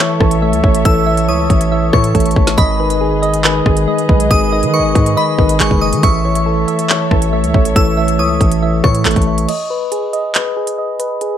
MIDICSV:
0, 0, Header, 1, 7, 480
1, 0, Start_track
1, 0, Tempo, 431655
1, 949, Time_signature, 4, 2, 24, 8
1, 12651, End_track
2, 0, Start_track
2, 0, Title_t, "Synth bell"
2, 0, Program_c, 0, 98
2, 0, Note_on_c, 0, 85, 104
2, 425, Note_off_c, 0, 85, 0
2, 948, Note_on_c, 0, 88, 107
2, 1400, Note_off_c, 0, 88, 0
2, 1429, Note_on_c, 0, 87, 80
2, 2106, Note_off_c, 0, 87, 0
2, 2149, Note_on_c, 0, 85, 70
2, 2826, Note_off_c, 0, 85, 0
2, 2865, Note_on_c, 0, 83, 105
2, 4262, Note_off_c, 0, 83, 0
2, 4790, Note_on_c, 0, 87, 126
2, 5240, Note_off_c, 0, 87, 0
2, 5267, Note_on_c, 0, 85, 91
2, 5719, Note_off_c, 0, 85, 0
2, 5753, Note_on_c, 0, 83, 89
2, 6202, Note_off_c, 0, 83, 0
2, 6233, Note_on_c, 0, 85, 83
2, 6459, Note_off_c, 0, 85, 0
2, 6466, Note_on_c, 0, 87, 82
2, 6695, Note_off_c, 0, 87, 0
2, 6710, Note_on_c, 0, 85, 104
2, 8105, Note_off_c, 0, 85, 0
2, 8629, Note_on_c, 0, 88, 109
2, 9080, Note_off_c, 0, 88, 0
2, 9110, Note_on_c, 0, 87, 78
2, 9786, Note_off_c, 0, 87, 0
2, 9830, Note_on_c, 0, 85, 73
2, 10506, Note_off_c, 0, 85, 0
2, 12651, End_track
3, 0, Start_track
3, 0, Title_t, "Synth keys"
3, 0, Program_c, 1, 88
3, 0, Note_on_c, 1, 69, 78
3, 0, Note_on_c, 1, 73, 86
3, 0, Note_on_c, 1, 76, 93
3, 211, Note_off_c, 1, 69, 0
3, 225, Note_on_c, 1, 69, 82
3, 456, Note_off_c, 1, 76, 0
3, 470, Note_on_c, 1, 76, 96
3, 694, Note_off_c, 1, 73, 0
3, 707, Note_on_c, 1, 73, 78
3, 937, Note_off_c, 1, 69, 0
3, 951, Note_on_c, 1, 69, 76
3, 1171, Note_off_c, 1, 76, 0
3, 1185, Note_on_c, 1, 76, 106
3, 1419, Note_off_c, 1, 73, 0
3, 1433, Note_on_c, 1, 73, 83
3, 1897, Note_off_c, 1, 76, 0
3, 1910, Note_on_c, 1, 76, 97
3, 2134, Note_off_c, 1, 73, 0
3, 2147, Note_on_c, 1, 73, 82
3, 2372, Note_off_c, 1, 69, 0
3, 2385, Note_on_c, 1, 69, 80
3, 2865, Note_on_c, 1, 75, 89
3, 2867, Note_off_c, 1, 69, 0
3, 2868, Note_off_c, 1, 73, 0
3, 2869, Note_off_c, 1, 76, 0
3, 3109, Note_on_c, 1, 71, 85
3, 3346, Note_on_c, 1, 68, 75
3, 3571, Note_off_c, 1, 75, 0
3, 3584, Note_on_c, 1, 75, 108
3, 3819, Note_off_c, 1, 71, 0
3, 3832, Note_on_c, 1, 71, 75
3, 4055, Note_off_c, 1, 68, 0
3, 4069, Note_on_c, 1, 68, 77
3, 4298, Note_off_c, 1, 75, 0
3, 4311, Note_on_c, 1, 75, 95
3, 4534, Note_off_c, 1, 71, 0
3, 4547, Note_on_c, 1, 71, 86
3, 4777, Note_off_c, 1, 68, 0
3, 4790, Note_on_c, 1, 68, 80
3, 5018, Note_off_c, 1, 75, 0
3, 5031, Note_on_c, 1, 75, 113
3, 5257, Note_off_c, 1, 71, 0
3, 5271, Note_on_c, 1, 71, 75
3, 5732, Note_off_c, 1, 75, 0
3, 5746, Note_on_c, 1, 75, 102
3, 5972, Note_off_c, 1, 71, 0
3, 5985, Note_on_c, 1, 71, 83
3, 6216, Note_off_c, 1, 68, 0
3, 6229, Note_on_c, 1, 68, 88
3, 6706, Note_on_c, 1, 76, 103
3, 6707, Note_off_c, 1, 71, 0
3, 6707, Note_off_c, 1, 75, 0
3, 6709, Note_off_c, 1, 68, 0
3, 6950, Note_on_c, 1, 73, 83
3, 7184, Note_on_c, 1, 69, 76
3, 7411, Note_off_c, 1, 76, 0
3, 7424, Note_on_c, 1, 76, 95
3, 7654, Note_off_c, 1, 73, 0
3, 7667, Note_on_c, 1, 73, 85
3, 7891, Note_off_c, 1, 69, 0
3, 7905, Note_on_c, 1, 69, 82
3, 8136, Note_off_c, 1, 76, 0
3, 8149, Note_on_c, 1, 76, 93
3, 8374, Note_off_c, 1, 73, 0
3, 8387, Note_on_c, 1, 73, 77
3, 8617, Note_off_c, 1, 69, 0
3, 8631, Note_on_c, 1, 69, 80
3, 8852, Note_off_c, 1, 76, 0
3, 8865, Note_on_c, 1, 76, 106
3, 9100, Note_off_c, 1, 73, 0
3, 9113, Note_on_c, 1, 73, 85
3, 9577, Note_off_c, 1, 76, 0
3, 9591, Note_on_c, 1, 76, 94
3, 9814, Note_off_c, 1, 73, 0
3, 9827, Note_on_c, 1, 73, 81
3, 10054, Note_off_c, 1, 69, 0
3, 10067, Note_on_c, 1, 69, 81
3, 10546, Note_on_c, 1, 75, 88
3, 10548, Note_off_c, 1, 69, 0
3, 10548, Note_off_c, 1, 73, 0
3, 10550, Note_off_c, 1, 76, 0
3, 10790, Note_on_c, 1, 71, 80
3, 11027, Note_on_c, 1, 68, 74
3, 11251, Note_off_c, 1, 75, 0
3, 11265, Note_on_c, 1, 75, 104
3, 11500, Note_off_c, 1, 71, 0
3, 11513, Note_on_c, 1, 71, 77
3, 11736, Note_off_c, 1, 68, 0
3, 11749, Note_on_c, 1, 68, 72
3, 11978, Note_off_c, 1, 75, 0
3, 11991, Note_on_c, 1, 75, 96
3, 12214, Note_off_c, 1, 71, 0
3, 12227, Note_on_c, 1, 71, 80
3, 12457, Note_off_c, 1, 68, 0
3, 12470, Note_on_c, 1, 68, 78
3, 12651, Note_off_c, 1, 68, 0
3, 12651, Note_off_c, 1, 71, 0
3, 12651, Note_off_c, 1, 75, 0
3, 12651, End_track
4, 0, Start_track
4, 0, Title_t, "String section"
4, 0, Program_c, 2, 48
4, 0, Note_on_c, 2, 57, 81
4, 0, Note_on_c, 2, 69, 74
4, 0, Note_on_c, 2, 73, 72
4, 0, Note_on_c, 2, 76, 87
4, 2830, Note_off_c, 2, 57, 0
4, 2830, Note_off_c, 2, 73, 0
4, 2830, Note_off_c, 2, 76, 0
4, 2831, Note_off_c, 2, 69, 0
4, 2868, Note_on_c, 2, 68, 75
4, 2868, Note_on_c, 2, 71, 72
4, 2869, Note_on_c, 2, 56, 78
4, 2869, Note_on_c, 2, 75, 85
4, 6670, Note_off_c, 2, 56, 0
4, 6670, Note_off_c, 2, 68, 0
4, 6670, Note_off_c, 2, 71, 0
4, 6670, Note_off_c, 2, 75, 0
4, 6709, Note_on_c, 2, 57, 81
4, 6709, Note_on_c, 2, 73, 71
4, 6709, Note_on_c, 2, 76, 88
4, 6710, Note_on_c, 2, 69, 72
4, 10510, Note_off_c, 2, 57, 0
4, 10510, Note_off_c, 2, 76, 0
4, 10511, Note_off_c, 2, 69, 0
4, 10511, Note_off_c, 2, 73, 0
4, 12651, End_track
5, 0, Start_track
5, 0, Title_t, "Tine electric piano"
5, 0, Program_c, 3, 4
5, 0, Control_c, 3, 64, 127
5, 0, Note_on_c, 3, 52, 77
5, 215, Note_off_c, 3, 52, 0
5, 228, Note_on_c, 3, 52, 74
5, 468, Note_on_c, 3, 57, 88
5, 708, Note_on_c, 3, 76, 84
5, 934, Note_off_c, 3, 52, 0
5, 948, Note_on_c, 3, 52, 96
5, 1173, Note_off_c, 3, 52, 0
5, 1187, Note_on_c, 3, 52, 69
5, 1415, Note_off_c, 3, 52, 0
5, 1428, Note_on_c, 3, 52, 75
5, 1668, Note_off_c, 3, 57, 0
5, 1894, Note_off_c, 3, 52, 0
5, 1907, Note_on_c, 3, 52, 74
5, 1908, Note_off_c, 3, 76, 0
5, 2135, Note_off_c, 3, 52, 0
5, 2149, Note_on_c, 3, 52, 76
5, 2388, Note_on_c, 3, 57, 90
5, 2629, Note_on_c, 3, 76, 89
5, 2868, Note_off_c, 3, 57, 0
5, 2868, Note_on_c, 3, 51, 96
5, 2869, Note_off_c, 3, 52, 0
5, 2869, Note_off_c, 3, 76, 0
5, 2881, Control_c, 3, 64, 0
5, 3088, Control_c, 3, 64, 127
5, 3096, Note_off_c, 3, 51, 0
5, 3110, Note_on_c, 3, 51, 76
5, 3336, Note_off_c, 3, 51, 0
5, 3350, Note_on_c, 3, 51, 66
5, 3816, Note_off_c, 3, 51, 0
5, 3829, Note_on_c, 3, 51, 74
5, 4055, Note_off_c, 3, 51, 0
5, 4068, Note_on_c, 3, 51, 71
5, 4309, Note_on_c, 3, 56, 96
5, 4549, Note_on_c, 3, 75, 82
5, 4777, Note_off_c, 3, 51, 0
5, 4790, Note_on_c, 3, 51, 91
5, 5015, Note_off_c, 3, 51, 0
5, 5029, Note_on_c, 3, 51, 73
5, 5255, Note_off_c, 3, 51, 0
5, 5268, Note_on_c, 3, 51, 79
5, 5509, Note_off_c, 3, 56, 0
5, 5736, Note_off_c, 3, 51, 0
5, 5749, Note_off_c, 3, 75, 0
5, 5749, Note_on_c, 3, 51, 81
5, 5976, Note_off_c, 3, 51, 0
5, 5989, Note_on_c, 3, 51, 79
5, 6229, Note_on_c, 3, 56, 88
5, 6470, Note_on_c, 3, 75, 90
5, 6708, Note_on_c, 3, 52, 100
5, 6709, Note_off_c, 3, 51, 0
5, 6709, Note_off_c, 3, 56, 0
5, 6709, Note_off_c, 3, 75, 0
5, 6725, Control_c, 3, 64, 0
5, 6935, Note_off_c, 3, 52, 0
5, 6936, Control_c, 3, 64, 127
5, 6948, Note_on_c, 3, 52, 72
5, 7176, Note_off_c, 3, 52, 0
5, 7189, Note_on_c, 3, 52, 75
5, 7655, Note_off_c, 3, 52, 0
5, 7668, Note_on_c, 3, 52, 72
5, 7895, Note_off_c, 3, 52, 0
5, 7908, Note_on_c, 3, 52, 76
5, 8148, Note_on_c, 3, 57, 91
5, 8388, Note_on_c, 3, 76, 79
5, 8615, Note_off_c, 3, 52, 0
5, 8628, Note_on_c, 3, 52, 95
5, 8855, Note_off_c, 3, 52, 0
5, 8868, Note_on_c, 3, 52, 69
5, 9096, Note_off_c, 3, 52, 0
5, 9109, Note_on_c, 3, 52, 75
5, 9348, Note_off_c, 3, 57, 0
5, 9574, Note_off_c, 3, 52, 0
5, 9588, Note_off_c, 3, 76, 0
5, 9588, Note_on_c, 3, 52, 75
5, 9816, Note_off_c, 3, 52, 0
5, 9829, Note_on_c, 3, 52, 80
5, 10068, Note_on_c, 3, 57, 92
5, 10309, Note_on_c, 3, 76, 90
5, 10548, Note_off_c, 3, 57, 0
5, 10549, Note_off_c, 3, 52, 0
5, 10549, Note_off_c, 3, 76, 0
5, 10565, Control_c, 3, 64, 0
5, 12651, End_track
6, 0, Start_track
6, 0, Title_t, "808-style bass"
6, 0, Program_c, 4, 38
6, 228, Note_on_c, 4, 33, 108
6, 588, Note_on_c, 4, 37, 104
6, 605, Note_off_c, 4, 33, 0
6, 702, Note_off_c, 4, 37, 0
6, 708, Note_on_c, 4, 33, 107
6, 939, Note_off_c, 4, 33, 0
6, 948, Note_on_c, 4, 33, 107
6, 1428, Note_on_c, 4, 37, 102
6, 1444, Note_off_c, 4, 33, 0
6, 1656, Note_off_c, 4, 37, 0
6, 1667, Note_on_c, 4, 33, 104
6, 2128, Note_off_c, 4, 33, 0
6, 2148, Note_on_c, 4, 45, 106
6, 2379, Note_off_c, 4, 45, 0
6, 2388, Note_on_c, 4, 33, 108
6, 2619, Note_off_c, 4, 33, 0
6, 2628, Note_on_c, 4, 33, 104
6, 2859, Note_off_c, 4, 33, 0
6, 2868, Note_on_c, 4, 32, 108
6, 4024, Note_off_c, 4, 32, 0
6, 4068, Note_on_c, 4, 32, 106
6, 4299, Note_off_c, 4, 32, 0
6, 4548, Note_on_c, 4, 35, 107
6, 4779, Note_off_c, 4, 35, 0
6, 4788, Note_on_c, 4, 32, 107
6, 5149, Note_on_c, 4, 51, 101
6, 5165, Note_off_c, 4, 32, 0
6, 5329, Note_on_c, 4, 32, 98
6, 5345, Note_off_c, 4, 51, 0
6, 5500, Note_off_c, 4, 32, 0
6, 5508, Note_on_c, 4, 44, 106
6, 5739, Note_off_c, 4, 44, 0
6, 5988, Note_on_c, 4, 32, 104
6, 6219, Note_off_c, 4, 32, 0
6, 6229, Note_on_c, 4, 32, 104
6, 6344, Note_off_c, 4, 32, 0
6, 6348, Note_on_c, 4, 30, 111
6, 6588, Note_on_c, 4, 51, 99
6, 6605, Note_off_c, 4, 30, 0
6, 6702, Note_off_c, 4, 51, 0
6, 6708, Note_on_c, 4, 33, 110
6, 7400, Note_off_c, 4, 33, 0
6, 7908, Note_on_c, 4, 33, 107
6, 8268, Note_on_c, 4, 37, 103
6, 8284, Note_off_c, 4, 33, 0
6, 8382, Note_off_c, 4, 37, 0
6, 8388, Note_on_c, 4, 33, 106
6, 8619, Note_off_c, 4, 33, 0
6, 8628, Note_on_c, 4, 33, 111
6, 9107, Note_on_c, 4, 37, 98
6, 9124, Note_off_c, 4, 33, 0
6, 9336, Note_off_c, 4, 37, 0
6, 9347, Note_on_c, 4, 33, 109
6, 9809, Note_off_c, 4, 33, 0
6, 9828, Note_on_c, 4, 45, 106
6, 10059, Note_off_c, 4, 45, 0
6, 10068, Note_on_c, 4, 33, 108
6, 10184, Note_off_c, 4, 33, 0
6, 10188, Note_on_c, 4, 33, 105
6, 10534, Note_off_c, 4, 33, 0
6, 12651, End_track
7, 0, Start_track
7, 0, Title_t, "Drums"
7, 228, Note_on_c, 9, 36, 100
7, 229, Note_on_c, 9, 37, 101
7, 339, Note_off_c, 9, 36, 0
7, 340, Note_off_c, 9, 37, 0
7, 347, Note_on_c, 9, 42, 89
7, 459, Note_off_c, 9, 42, 0
7, 590, Note_on_c, 9, 42, 70
7, 701, Note_off_c, 9, 42, 0
7, 708, Note_on_c, 9, 36, 112
7, 819, Note_off_c, 9, 36, 0
7, 829, Note_on_c, 9, 42, 94
7, 940, Note_off_c, 9, 42, 0
7, 947, Note_on_c, 9, 42, 72
7, 948, Note_on_c, 9, 36, 125
7, 1058, Note_off_c, 9, 42, 0
7, 1059, Note_off_c, 9, 36, 0
7, 1305, Note_on_c, 9, 42, 80
7, 1416, Note_off_c, 9, 42, 0
7, 1667, Note_on_c, 9, 36, 98
7, 1669, Note_on_c, 9, 42, 68
7, 1778, Note_off_c, 9, 36, 0
7, 1780, Note_off_c, 9, 42, 0
7, 1788, Note_on_c, 9, 42, 81
7, 1899, Note_off_c, 9, 42, 0
7, 2148, Note_on_c, 9, 36, 97
7, 2149, Note_on_c, 9, 37, 100
7, 2259, Note_off_c, 9, 36, 0
7, 2260, Note_off_c, 9, 37, 0
7, 2268, Note_on_c, 9, 42, 89
7, 2379, Note_off_c, 9, 42, 0
7, 2388, Note_on_c, 9, 36, 65
7, 2389, Note_on_c, 9, 42, 63
7, 2448, Note_off_c, 9, 42, 0
7, 2448, Note_on_c, 9, 42, 64
7, 2499, Note_off_c, 9, 36, 0
7, 2508, Note_off_c, 9, 42, 0
7, 2508, Note_on_c, 9, 42, 62
7, 2568, Note_off_c, 9, 42, 0
7, 2568, Note_on_c, 9, 42, 60
7, 2628, Note_on_c, 9, 36, 100
7, 2679, Note_off_c, 9, 42, 0
7, 2739, Note_off_c, 9, 36, 0
7, 2749, Note_on_c, 9, 38, 96
7, 2750, Note_on_c, 9, 42, 97
7, 2860, Note_off_c, 9, 38, 0
7, 2861, Note_off_c, 9, 42, 0
7, 2868, Note_on_c, 9, 36, 125
7, 2869, Note_on_c, 9, 42, 69
7, 2979, Note_off_c, 9, 36, 0
7, 2980, Note_off_c, 9, 42, 0
7, 3227, Note_on_c, 9, 42, 81
7, 3338, Note_off_c, 9, 42, 0
7, 3590, Note_on_c, 9, 42, 67
7, 3701, Note_off_c, 9, 42, 0
7, 3709, Note_on_c, 9, 42, 80
7, 3821, Note_off_c, 9, 42, 0
7, 3828, Note_on_c, 9, 39, 127
7, 3939, Note_off_c, 9, 39, 0
7, 4068, Note_on_c, 9, 36, 97
7, 4069, Note_on_c, 9, 37, 99
7, 4180, Note_off_c, 9, 36, 0
7, 4181, Note_off_c, 9, 37, 0
7, 4188, Note_on_c, 9, 42, 87
7, 4299, Note_off_c, 9, 42, 0
7, 4431, Note_on_c, 9, 42, 70
7, 4542, Note_off_c, 9, 42, 0
7, 4548, Note_on_c, 9, 36, 111
7, 4659, Note_off_c, 9, 36, 0
7, 4670, Note_on_c, 9, 42, 95
7, 4782, Note_off_c, 9, 42, 0
7, 4788, Note_on_c, 9, 36, 125
7, 4789, Note_on_c, 9, 42, 72
7, 4900, Note_off_c, 9, 36, 0
7, 4900, Note_off_c, 9, 42, 0
7, 5147, Note_on_c, 9, 42, 80
7, 5258, Note_off_c, 9, 42, 0
7, 5508, Note_on_c, 9, 36, 104
7, 5510, Note_on_c, 9, 42, 67
7, 5619, Note_off_c, 9, 36, 0
7, 5621, Note_off_c, 9, 42, 0
7, 5630, Note_on_c, 9, 42, 82
7, 5741, Note_off_c, 9, 42, 0
7, 5988, Note_on_c, 9, 36, 93
7, 6100, Note_off_c, 9, 36, 0
7, 6108, Note_on_c, 9, 42, 89
7, 6219, Note_off_c, 9, 42, 0
7, 6228, Note_on_c, 9, 39, 122
7, 6230, Note_on_c, 9, 42, 76
7, 6339, Note_off_c, 9, 39, 0
7, 6342, Note_off_c, 9, 42, 0
7, 6348, Note_on_c, 9, 36, 94
7, 6459, Note_off_c, 9, 36, 0
7, 6590, Note_on_c, 9, 42, 94
7, 6701, Note_off_c, 9, 42, 0
7, 6708, Note_on_c, 9, 36, 123
7, 6708, Note_on_c, 9, 42, 71
7, 6819, Note_off_c, 9, 36, 0
7, 6819, Note_off_c, 9, 42, 0
7, 7066, Note_on_c, 9, 42, 81
7, 7177, Note_off_c, 9, 42, 0
7, 7429, Note_on_c, 9, 42, 67
7, 7540, Note_off_c, 9, 42, 0
7, 7548, Note_on_c, 9, 42, 82
7, 7659, Note_off_c, 9, 42, 0
7, 7667, Note_on_c, 9, 39, 124
7, 7778, Note_off_c, 9, 39, 0
7, 7908, Note_on_c, 9, 36, 93
7, 7909, Note_on_c, 9, 37, 96
7, 8019, Note_off_c, 9, 36, 0
7, 8020, Note_off_c, 9, 37, 0
7, 8027, Note_on_c, 9, 42, 90
7, 8139, Note_off_c, 9, 42, 0
7, 8271, Note_on_c, 9, 42, 69
7, 8382, Note_off_c, 9, 42, 0
7, 8388, Note_on_c, 9, 36, 107
7, 8499, Note_off_c, 9, 36, 0
7, 8510, Note_on_c, 9, 42, 96
7, 8621, Note_off_c, 9, 42, 0
7, 8628, Note_on_c, 9, 36, 126
7, 8628, Note_on_c, 9, 42, 68
7, 8739, Note_off_c, 9, 36, 0
7, 8740, Note_off_c, 9, 42, 0
7, 8986, Note_on_c, 9, 42, 78
7, 9097, Note_off_c, 9, 42, 0
7, 9348, Note_on_c, 9, 36, 99
7, 9350, Note_on_c, 9, 42, 66
7, 9459, Note_off_c, 9, 36, 0
7, 9461, Note_off_c, 9, 42, 0
7, 9469, Note_on_c, 9, 42, 80
7, 9580, Note_off_c, 9, 42, 0
7, 9828, Note_on_c, 9, 36, 99
7, 9829, Note_on_c, 9, 37, 99
7, 9939, Note_off_c, 9, 36, 0
7, 9940, Note_off_c, 9, 37, 0
7, 9948, Note_on_c, 9, 42, 88
7, 10059, Note_off_c, 9, 42, 0
7, 10068, Note_on_c, 9, 39, 127
7, 10068, Note_on_c, 9, 42, 66
7, 10128, Note_off_c, 9, 42, 0
7, 10128, Note_on_c, 9, 42, 65
7, 10179, Note_off_c, 9, 39, 0
7, 10188, Note_off_c, 9, 42, 0
7, 10188, Note_on_c, 9, 36, 89
7, 10188, Note_on_c, 9, 42, 63
7, 10249, Note_off_c, 9, 42, 0
7, 10249, Note_on_c, 9, 42, 62
7, 10299, Note_off_c, 9, 36, 0
7, 10360, Note_off_c, 9, 42, 0
7, 10429, Note_on_c, 9, 42, 94
7, 10540, Note_off_c, 9, 42, 0
7, 10547, Note_on_c, 9, 42, 69
7, 10548, Note_on_c, 9, 49, 95
7, 10659, Note_off_c, 9, 42, 0
7, 10659, Note_off_c, 9, 49, 0
7, 11028, Note_on_c, 9, 42, 89
7, 11139, Note_off_c, 9, 42, 0
7, 11269, Note_on_c, 9, 42, 60
7, 11380, Note_off_c, 9, 42, 0
7, 11507, Note_on_c, 9, 39, 120
7, 11507, Note_on_c, 9, 42, 69
7, 11619, Note_off_c, 9, 39, 0
7, 11619, Note_off_c, 9, 42, 0
7, 11867, Note_on_c, 9, 42, 83
7, 11978, Note_off_c, 9, 42, 0
7, 12228, Note_on_c, 9, 42, 80
7, 12339, Note_off_c, 9, 42, 0
7, 12467, Note_on_c, 9, 42, 67
7, 12578, Note_off_c, 9, 42, 0
7, 12651, End_track
0, 0, End_of_file